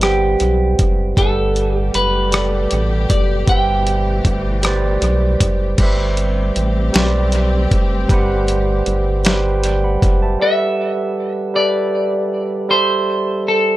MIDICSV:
0, 0, Header, 1, 6, 480
1, 0, Start_track
1, 0, Tempo, 769231
1, 728, Time_signature, 6, 3, 24, 8
1, 8592, End_track
2, 0, Start_track
2, 0, Title_t, "Clean electric guitar"
2, 0, Program_c, 0, 27
2, 16, Note_on_c, 0, 67, 85
2, 527, Note_off_c, 0, 67, 0
2, 738, Note_on_c, 0, 69, 92
2, 1093, Note_off_c, 0, 69, 0
2, 1093, Note_on_c, 0, 67, 92
2, 1215, Note_off_c, 0, 67, 0
2, 1217, Note_on_c, 0, 71, 91
2, 1933, Note_off_c, 0, 71, 0
2, 1936, Note_on_c, 0, 74, 83
2, 2177, Note_off_c, 0, 74, 0
2, 2180, Note_on_c, 0, 79, 111
2, 2779, Note_off_c, 0, 79, 0
2, 2779, Note_on_c, 0, 78, 111
2, 3109, Note_off_c, 0, 78, 0
2, 6504, Note_on_c, 0, 76, 127
2, 7211, Note_off_c, 0, 76, 0
2, 7213, Note_on_c, 0, 74, 108
2, 7927, Note_off_c, 0, 74, 0
2, 7929, Note_on_c, 0, 72, 119
2, 8383, Note_off_c, 0, 72, 0
2, 8414, Note_on_c, 0, 69, 98
2, 8592, Note_off_c, 0, 69, 0
2, 8592, End_track
3, 0, Start_track
3, 0, Title_t, "Tine electric piano"
3, 0, Program_c, 1, 4
3, 0, Control_c, 1, 64, 127
3, 0, Note_on_c, 1, 55, 72
3, 0, Note_on_c, 1, 60, 63
3, 0, Note_on_c, 1, 67, 66
3, 0, Note_on_c, 1, 71, 64
3, 0, Note_on_c, 1, 76, 69
3, 5, Note_off_c, 1, 55, 0
3, 5, Note_on_c, 1, 55, 67
3, 13, Note_off_c, 1, 67, 0
3, 13, Note_on_c, 1, 67, 53
3, 21, Note_off_c, 1, 71, 0
3, 21, Note_on_c, 1, 71, 57
3, 29, Note_on_c, 1, 72, 63
3, 35, Note_on_c, 1, 78, 57
3, 75, Note_on_c, 1, 79, 68
3, 596, Note_off_c, 1, 55, 0
3, 601, Note_off_c, 1, 67, 0
3, 604, Note_off_c, 1, 71, 0
3, 608, Note_off_c, 1, 72, 0
3, 631, Note_off_c, 1, 79, 0
3, 726, Note_on_c, 1, 55, 72
3, 735, Control_c, 1, 64, 0
3, 735, Note_on_c, 1, 67, 73
3, 736, Note_off_c, 1, 60, 0
3, 736, Note_off_c, 1, 78, 0
3, 739, Note_off_c, 1, 76, 0
3, 740, Note_on_c, 1, 69, 65
3, 747, Note_on_c, 1, 71, 63
3, 755, Note_on_c, 1, 78, 77
3, 834, Control_c, 1, 64, 127
3, 1317, Note_off_c, 1, 55, 0
3, 1321, Note_off_c, 1, 67, 0
3, 1324, Note_off_c, 1, 69, 0
3, 1327, Note_off_c, 1, 71, 0
3, 1332, Note_off_c, 1, 78, 0
3, 1444, Note_on_c, 1, 55, 62
3, 1451, Note_on_c, 1, 67, 63
3, 1459, Note_on_c, 1, 69, 59
3, 1468, Note_on_c, 1, 71, 63
3, 1474, Note_on_c, 1, 74, 67
3, 2036, Note_off_c, 1, 55, 0
3, 2039, Note_off_c, 1, 67, 0
3, 2044, Note_off_c, 1, 69, 0
3, 2048, Note_off_c, 1, 71, 0
3, 2051, Note_off_c, 1, 74, 0
3, 2165, Note_on_c, 1, 55, 67
3, 2173, Note_on_c, 1, 67, 64
3, 2176, Control_c, 1, 64, 0
3, 2181, Note_on_c, 1, 71, 66
3, 2186, Note_on_c, 1, 72, 67
3, 2195, Note_on_c, 1, 76, 83
3, 2290, Control_c, 1, 64, 127
3, 2756, Note_off_c, 1, 55, 0
3, 2761, Note_off_c, 1, 67, 0
3, 2764, Note_off_c, 1, 71, 0
3, 2767, Note_off_c, 1, 72, 0
3, 2771, Note_off_c, 1, 76, 0
3, 2888, Note_on_c, 1, 55, 75
3, 2895, Note_on_c, 1, 67, 72
3, 2900, Note_on_c, 1, 71, 79
3, 2909, Note_on_c, 1, 72, 75
3, 2915, Note_on_c, 1, 74, 94
3, 3478, Note_off_c, 1, 55, 0
3, 3481, Note_off_c, 1, 67, 0
3, 3484, Note_off_c, 1, 71, 0
3, 3488, Note_off_c, 1, 72, 0
3, 3491, Note_off_c, 1, 74, 0
3, 3607, Note_on_c, 1, 55, 89
3, 3615, Control_c, 1, 64, 0
3, 3617, Note_on_c, 1, 67, 79
3, 3622, Note_on_c, 1, 71, 76
3, 3630, Note_on_c, 1, 72, 75
3, 3637, Note_on_c, 1, 76, 99
3, 3715, Control_c, 1, 64, 127
3, 4198, Note_off_c, 1, 55, 0
3, 4202, Note_off_c, 1, 67, 0
3, 4205, Note_off_c, 1, 71, 0
3, 4209, Note_off_c, 1, 72, 0
3, 4213, Note_off_c, 1, 76, 0
3, 4325, Note_on_c, 1, 55, 80
3, 4333, Note_on_c, 1, 67, 69
3, 4342, Note_on_c, 1, 71, 69
3, 4349, Note_on_c, 1, 72, 72
3, 4355, Note_on_c, 1, 74, 80
3, 4916, Note_off_c, 1, 55, 0
3, 4920, Note_off_c, 1, 67, 0
3, 4925, Note_off_c, 1, 71, 0
3, 4928, Note_off_c, 1, 72, 0
3, 4931, Note_off_c, 1, 74, 0
3, 5046, Note_on_c, 1, 55, 83
3, 5053, Note_on_c, 1, 67, 77
3, 5060, Note_on_c, 1, 71, 85
3, 5068, Note_on_c, 1, 72, 77
3, 5077, Note_on_c, 1, 78, 102
3, 5637, Note_off_c, 1, 55, 0
3, 5641, Note_off_c, 1, 67, 0
3, 5644, Note_off_c, 1, 71, 0
3, 5648, Note_off_c, 1, 72, 0
3, 5653, Note_off_c, 1, 78, 0
3, 5769, Note_on_c, 1, 55, 83
3, 5775, Note_on_c, 1, 67, 73
3, 5784, Note_on_c, 1, 71, 77
3, 5792, Note_on_c, 1, 72, 69
3, 5799, Note_on_c, 1, 79, 94
3, 6015, Note_off_c, 1, 79, 0
3, 6023, Note_on_c, 1, 79, 62
3, 6024, Note_on_c, 1, 74, 51
3, 6129, Note_off_c, 1, 79, 0
3, 6130, Note_off_c, 1, 74, 0
3, 6141, Note_on_c, 1, 83, 61
3, 6144, Note_on_c, 1, 78, 59
3, 6358, Note_off_c, 1, 55, 0
3, 6361, Note_off_c, 1, 67, 0
3, 6363, Note_off_c, 1, 83, 0
3, 6364, Note_off_c, 1, 78, 0
3, 6366, Note_off_c, 1, 71, 0
3, 6370, Note_off_c, 1, 72, 0
3, 6379, Note_on_c, 1, 81, 64
3, 6383, Note_on_c, 1, 76, 57
3, 6486, Note_on_c, 1, 55, 76
3, 6493, Note_on_c, 1, 67, 72
3, 6495, Control_c, 1, 64, 0
3, 6500, Note_on_c, 1, 69, 66
3, 6507, Note_on_c, 1, 71, 69
3, 6515, Note_on_c, 1, 78, 86
3, 6591, Control_c, 1, 64, 127
3, 6602, Note_off_c, 1, 81, 0
3, 6604, Note_off_c, 1, 76, 0
3, 7077, Note_off_c, 1, 55, 0
3, 7080, Note_off_c, 1, 67, 0
3, 7084, Note_off_c, 1, 69, 0
3, 7087, Note_off_c, 1, 71, 0
3, 7092, Note_off_c, 1, 78, 0
3, 7201, Note_on_c, 1, 55, 74
3, 7209, Note_on_c, 1, 67, 70
3, 7215, Note_on_c, 1, 69, 64
3, 7222, Note_on_c, 1, 71, 67
3, 7232, Note_on_c, 1, 76, 74
3, 7794, Note_off_c, 1, 55, 0
3, 7798, Note_off_c, 1, 67, 0
3, 7802, Note_off_c, 1, 69, 0
3, 7805, Note_off_c, 1, 71, 0
3, 7810, Note_off_c, 1, 76, 0
3, 7919, Note_on_c, 1, 55, 81
3, 7926, Note_on_c, 1, 67, 69
3, 7933, Note_on_c, 1, 69, 74
3, 7936, Control_c, 1, 64, 0
3, 7940, Note_on_c, 1, 72, 70
3, 7947, Note_on_c, 1, 76, 90
3, 8027, Control_c, 1, 64, 127
3, 8513, Note_off_c, 1, 55, 0
3, 8517, Note_off_c, 1, 67, 0
3, 8520, Note_off_c, 1, 69, 0
3, 8524, Note_off_c, 1, 72, 0
3, 8527, Note_off_c, 1, 76, 0
3, 8592, End_track
4, 0, Start_track
4, 0, Title_t, "String section"
4, 0, Program_c, 2, 48
4, 727, Note_on_c, 2, 67, 87
4, 728, Note_on_c, 2, 55, 72
4, 729, Note_on_c, 2, 47, 67
4, 730, Note_on_c, 2, 57, 66
4, 2153, Note_off_c, 2, 55, 0
4, 2154, Note_off_c, 2, 57, 0
4, 2171, Note_on_c, 2, 52, 74
4, 2173, Note_on_c, 2, 57, 66
4, 3582, Note_off_c, 2, 67, 0
4, 3583, Note_off_c, 2, 47, 0
4, 3595, Note_off_c, 2, 52, 0
4, 3596, Note_off_c, 2, 57, 0
4, 3607, Note_on_c, 2, 67, 84
4, 3609, Note_on_c, 2, 55, 65
4, 3609, Note_on_c, 2, 57, 61
4, 3609, Note_on_c, 2, 60, 73
4, 6462, Note_off_c, 2, 67, 0
4, 6463, Note_off_c, 2, 55, 0
4, 6463, Note_off_c, 2, 60, 0
4, 6464, Note_off_c, 2, 57, 0
4, 8592, End_track
5, 0, Start_track
5, 0, Title_t, "Analog synth bass"
5, 0, Program_c, 3, 38
5, 0, Note_on_c, 3, 31, 88
5, 227, Note_off_c, 3, 31, 0
5, 255, Note_on_c, 3, 35, 83
5, 468, Note_off_c, 3, 35, 0
5, 497, Note_on_c, 3, 30, 87
5, 709, Note_off_c, 3, 30, 0
5, 735, Note_on_c, 3, 31, 112
5, 1186, Note_off_c, 3, 31, 0
5, 1217, Note_on_c, 3, 30, 85
5, 1668, Note_off_c, 3, 30, 0
5, 1700, Note_on_c, 3, 33, 94
5, 1910, Note_off_c, 3, 33, 0
5, 1936, Note_on_c, 3, 30, 88
5, 2148, Note_off_c, 3, 30, 0
5, 2174, Note_on_c, 3, 31, 100
5, 2626, Note_off_c, 3, 31, 0
5, 2657, Note_on_c, 3, 31, 93
5, 3107, Note_off_c, 3, 31, 0
5, 3133, Note_on_c, 3, 35, 93
5, 3346, Note_off_c, 3, 35, 0
5, 3375, Note_on_c, 3, 30, 81
5, 3588, Note_off_c, 3, 30, 0
5, 3615, Note_on_c, 3, 31, 101
5, 4066, Note_off_c, 3, 31, 0
5, 4096, Note_on_c, 3, 33, 86
5, 4308, Note_off_c, 3, 33, 0
5, 4338, Note_on_c, 3, 35, 84
5, 4788, Note_off_c, 3, 35, 0
5, 4819, Note_on_c, 3, 30, 88
5, 5030, Note_off_c, 3, 30, 0
5, 5055, Note_on_c, 3, 31, 101
5, 5507, Note_off_c, 3, 31, 0
5, 5535, Note_on_c, 3, 31, 94
5, 6226, Note_off_c, 3, 31, 0
5, 6259, Note_on_c, 3, 30, 98
5, 6470, Note_off_c, 3, 30, 0
5, 8592, End_track
6, 0, Start_track
6, 0, Title_t, "Drums"
6, 9, Note_on_c, 9, 42, 63
6, 19, Note_on_c, 9, 37, 108
6, 71, Note_off_c, 9, 42, 0
6, 81, Note_off_c, 9, 37, 0
6, 249, Note_on_c, 9, 42, 59
6, 312, Note_off_c, 9, 42, 0
6, 492, Note_on_c, 9, 42, 74
6, 494, Note_on_c, 9, 36, 86
6, 555, Note_off_c, 9, 42, 0
6, 556, Note_off_c, 9, 36, 0
6, 730, Note_on_c, 9, 36, 100
6, 734, Note_on_c, 9, 42, 63
6, 793, Note_off_c, 9, 36, 0
6, 796, Note_off_c, 9, 42, 0
6, 974, Note_on_c, 9, 42, 51
6, 1036, Note_off_c, 9, 42, 0
6, 1212, Note_on_c, 9, 42, 64
6, 1274, Note_off_c, 9, 42, 0
6, 1450, Note_on_c, 9, 42, 71
6, 1460, Note_on_c, 9, 37, 102
6, 1512, Note_off_c, 9, 42, 0
6, 1522, Note_off_c, 9, 37, 0
6, 1689, Note_on_c, 9, 42, 56
6, 1751, Note_off_c, 9, 42, 0
6, 1933, Note_on_c, 9, 36, 93
6, 1934, Note_on_c, 9, 42, 86
6, 1996, Note_off_c, 9, 36, 0
6, 1996, Note_off_c, 9, 42, 0
6, 2168, Note_on_c, 9, 36, 105
6, 2169, Note_on_c, 9, 42, 65
6, 2231, Note_off_c, 9, 36, 0
6, 2231, Note_off_c, 9, 42, 0
6, 2413, Note_on_c, 9, 42, 52
6, 2475, Note_off_c, 9, 42, 0
6, 2650, Note_on_c, 9, 36, 81
6, 2651, Note_on_c, 9, 42, 61
6, 2713, Note_off_c, 9, 36, 0
6, 2714, Note_off_c, 9, 42, 0
6, 2890, Note_on_c, 9, 42, 76
6, 2900, Note_on_c, 9, 37, 109
6, 2952, Note_off_c, 9, 42, 0
6, 2962, Note_off_c, 9, 37, 0
6, 3132, Note_on_c, 9, 42, 60
6, 3194, Note_off_c, 9, 42, 0
6, 3372, Note_on_c, 9, 36, 80
6, 3374, Note_on_c, 9, 42, 87
6, 3435, Note_off_c, 9, 36, 0
6, 3436, Note_off_c, 9, 42, 0
6, 3607, Note_on_c, 9, 49, 94
6, 3608, Note_on_c, 9, 36, 111
6, 3608, Note_on_c, 9, 42, 65
6, 3669, Note_off_c, 9, 49, 0
6, 3670, Note_off_c, 9, 42, 0
6, 3671, Note_off_c, 9, 36, 0
6, 3851, Note_on_c, 9, 42, 51
6, 3914, Note_off_c, 9, 42, 0
6, 4093, Note_on_c, 9, 42, 51
6, 4155, Note_off_c, 9, 42, 0
6, 4331, Note_on_c, 9, 42, 72
6, 4341, Note_on_c, 9, 38, 109
6, 4393, Note_off_c, 9, 42, 0
6, 4403, Note_off_c, 9, 38, 0
6, 4569, Note_on_c, 9, 42, 60
6, 4631, Note_off_c, 9, 42, 0
6, 4813, Note_on_c, 9, 36, 94
6, 4814, Note_on_c, 9, 42, 55
6, 4876, Note_off_c, 9, 36, 0
6, 4877, Note_off_c, 9, 42, 0
6, 5051, Note_on_c, 9, 36, 112
6, 5054, Note_on_c, 9, 42, 67
6, 5113, Note_off_c, 9, 36, 0
6, 5117, Note_off_c, 9, 42, 0
6, 5293, Note_on_c, 9, 42, 57
6, 5356, Note_off_c, 9, 42, 0
6, 5530, Note_on_c, 9, 42, 47
6, 5593, Note_off_c, 9, 42, 0
6, 5770, Note_on_c, 9, 42, 78
6, 5781, Note_on_c, 9, 38, 125
6, 5833, Note_off_c, 9, 42, 0
6, 5843, Note_off_c, 9, 38, 0
6, 6012, Note_on_c, 9, 42, 64
6, 6075, Note_off_c, 9, 42, 0
6, 6255, Note_on_c, 9, 36, 89
6, 6257, Note_on_c, 9, 42, 56
6, 6317, Note_off_c, 9, 36, 0
6, 6320, Note_off_c, 9, 42, 0
6, 8592, End_track
0, 0, End_of_file